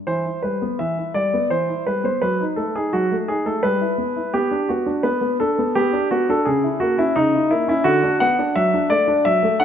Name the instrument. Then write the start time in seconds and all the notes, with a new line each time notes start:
grand piano
0.07 E3 C5
0.26 E4
0.43 G3 B4
0.62 B3
0.79 E3 E5
0.98 E4
1.14 G3 D5
1.34 B3
1.50 E3 C5
1.69 E4
1.87 G3 B4
2.04 B3 C5
2.22 F#3 B4
2.40 D#4
2.56 A3 A4
2.75 D#4 G#4
2.93 F#3 F#4
3.12 A3
3.28 D#4 G#4
3.46 A3 A4
3.63 G3 B4
3.81 E4
3.98 B3
4.16 E4
4.34 B3 G4
4.51 D4
4.69 B3 F#4
4.86 D4
5.03 B3 B4
5.21 B3
5.40 D4 A4
5.59 B3
5.75 B3 G4
5.93 D4
6.11 B3 F#4
6.29 D4 A4
6.45 C#3 G#4
6.64 E4
6.80 A#3 F#4
6.98 C#4 E4
7.16 C#3 D#4
7.34 E4
7.51 A#3 E4
7.68 C#4 E4
7.84 D3 F#4
8.04 D4
8.20 B3 F#5
8.39 D4
8.56 F#3 E5
8.74 D4
8.90 A3 D5
9.08 D4
9.25 F#3 E5
9.43 A3
9.60 D4 F#5